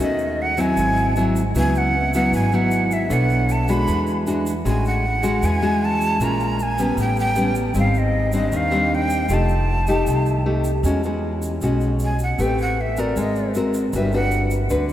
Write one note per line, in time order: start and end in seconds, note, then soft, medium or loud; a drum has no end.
0.00 0.73 D#2 medium
0.00 0.57 D#3 soft
0.00 0.55 A3 medium
0.00 0.55 C#4 medium
0.00 0.55 F#4 medium
0.00 0.43 D#5 medium
0.18 shaker soft
0.42 0.62 F#5 medium
0.57 1.13 F#3 medium
0.57 1.13 C4 medium
0.57 1.13 E4 medium
0.57 1.37 G#5 loud
0.57 shaker medium
0.77 1.51 G#1 medium
0.77 1.53 G#2 medium
0.77 shaker medium
0.97 shaker soft
1.16 1.41 F#3 medium
1.16 1.42 C4 medium
1.16 1.42 E4 medium
1.16 shaker medium
1.36 shaker medium
1.54 2.28 C#2 medium
1.54 2.31 C#3 medium
1.54 1.94 F#3 medium
1.54 1.94 B3 medium
1.54 1.94 E4 medium
1.54 shaker medium
1.59 1.79 G#5 loud
1.75 2.15 F#5 loud
1.75 shaker soft
2.13 2.50 F#3 medium
2.13 2.50 B3 medium
2.13 2.50 E4 medium
2.13 2.32 F#5 medium
2.13 shaker medium
2.32 3.06 G#1 medium
2.32 3.09 G#2 medium
2.32 2.56 G#5 loud
2.32 shaker medium
2.52 3.08 F#3 medium
2.52 3.08 B3 medium
2.52 3.08 E4 medium
2.52 2.95 F#5 medium
2.52 shaker soft
2.71 shaker medium
2.91 3.15 E5 medium
2.91 shaker medium
3.10 3.84 B1 medium
3.10 3.68 B3 medium
3.10 3.65 D4 medium
3.10 3.65 A4 medium
3.10 3.66 C#5 medium
3.10 3.53 F#5 loud
3.10 shaker medium
3.29 shaker soft
3.49 3.72 A5 loud
3.49 shaker medium
3.68 4.24 G#3 medium
3.68 4.24 D4 medium
3.68 4.24 F#4 medium
3.68 4.20 B5 loud
3.68 shaker medium
3.87 4.61 E2 medium
3.87 4.63 E3 medium
3.87 shaker medium
4.07 shaker soft
4.27 4.52 G#3 medium
4.27 4.52 D4 medium
4.27 4.52 F#4 medium
4.27 shaker medium
4.46 shaker medium
4.65 5.39 A1 medium
4.65 5.41 A2 medium
4.65 5.04 G#3 medium
4.65 5.04 C#4 medium
4.65 5.04 F#4 medium
4.65 4.85 G#5 medium
4.65 shaker medium
4.85 5.47 F#5 loud
4.85 shaker soft
5.23 5.59 G#3 medium
5.23 5.59 C#4 medium
5.23 5.59 F#4 medium
5.23 shaker medium
5.42 6.16 E2 medium
5.42 6.18 E3 medium
5.42 5.86 G#5 loud
5.42 shaker medium
5.62 6.17 G#3 medium
5.62 6.17 C#4 medium
5.62 6.17 F#4 medium
5.62 shaker soft
5.85 6.25 A5 loud
6.01 shaker medium
6.19 6.93 A#1 loud
6.19 6.96 A#2 medium
6.19 6.59 G#3 medium
6.19 6.59 C#4 medium
6.19 6.59 F4 medium
6.19 6.64 A#5 loud
6.19 shaker medium
6.40 shaker soft
6.59 7.00 G#5 loud
6.59 shaker medium
6.78 7.34 G3 medium
6.78 7.34 B3 medium
6.78 7.34 C#4 medium
6.78 shaker medium
6.97 7.71 A1 medium
6.97 7.73 A2 medium
6.97 shaker medium
7.01 7.17 G5 loud
7.16 7.54 G5 loud
7.16 shaker soft
7.36 7.72 G3 medium
7.36 7.72 B3 medium
7.36 7.72 C#4 medium
7.36 shaker medium
7.55 shaker medium
7.74 8.48 G#1 loud
7.74 8.51 G#2 medium
7.74 8.30 G3 medium
7.74 8.30 C4 medium
7.74 shaker medium
7.79 8.00 F5 medium
7.94 shaker soft
7.98 8.35 D#5 loud
8.32 8.69 G3 medium
8.32 8.69 C4 medium
8.32 8.69 D4 medium
8.32 shaker medium
8.37 8.58 D#5 medium
8.52 9.25 D#2 medium
8.52 9.28 D#3 medium
8.52 shaker medium
8.56 8.96 F5 loud
8.71 9.26 G3 medium
8.71 9.26 C4 medium
8.71 9.27 D4 medium
8.71 shaker soft
8.95 9.35 G5 loud
9.10 shaker medium
9.29 10.02 F1 medium
9.29 10.05 F3 medium
9.29 9.68 A3 medium
9.29 9.69 D#4 medium
9.29 9.69 G4 medium
9.29 shaker medium
9.34 10.67 A5 medium
9.49 shaker soft
9.87 10.43 A3 medium
9.87 10.43 D#4 medium
9.87 10.43 G4 medium
9.87 shaker medium
10.07 10.80 C2 medium
10.07 10.82 C3 medium
10.07 shaker medium
10.26 shaker soft
10.46 10.71 A3 medium
10.46 10.71 D#4 medium
10.46 10.71 G4 medium
10.64 shaker medium
10.83 11.57 E2 loud
10.83 11.60 E3 medium
10.83 11.01 G#3 medium
10.83 11.01 C#4 medium
10.83 11.01 F#4 medium
10.83 shaker medium
11.03 11.59 G#3 medium
11.03 11.59 C#4 medium
11.03 11.59 F#4 medium
11.03 shaker soft
11.42 shaker medium
11.61 12.35 B1 medium
11.61 12.37 B2 medium
11.61 12.14 G#3 soft
11.61 12.14 C#4 medium
11.61 12.14 F#4 medium
11.61 shaker medium
11.81 shaker soft
11.99 shaker medium
12.05 12.20 G#5 medium
12.19 shaker medium
12.23 12.44 F#5 medium
12.38 13.12 A1 medium
12.38 13.14 A3 medium
12.38 12.77 C4 soft
12.38 12.78 G4 medium
12.38 12.78 B4 medium
12.38 12.60 G5 medium
12.38 shaker medium
12.58 12.82 F#5 medium
12.58 shaker soft
12.81 13.01 E5 medium
12.97 13.52 C4 medium
12.97 13.52 F#4 medium
12.97 13.52 A#4 medium
12.97 13.17 D5 medium
12.97 shaker medium
13.16 13.89 G#1 medium
13.16 13.91 G#3 medium
13.16 shaker medium
13.20 13.54 D#5 medium
13.35 shaker soft
13.54 13.92 C4 medium
13.54 13.93 F#4 medium
13.54 13.93 A#4 medium
13.54 shaker medium
13.74 shaker medium
13.93 14.67 G1 loud
13.93 14.70 G3 medium
13.93 14.10 D4 medium
13.93 14.11 F#4 soft
13.93 14.11 B4 medium
13.93 14.13 E5 medium
13.93 shaker medium
14.12 14.68 D4 medium
14.12 14.68 F#4 medium
14.12 14.68 B4 medium
14.12 14.50 F#5 medium
14.12 shaker soft
14.31 shaker medium
14.51 shaker medium
14.70 14.93 D2 medium
14.70 14.93 D3 medium
14.70 14.93 D4 medium
14.70 14.93 F#4 soft
14.70 14.93 B4 medium
14.70 shaker medium
14.89 shaker soft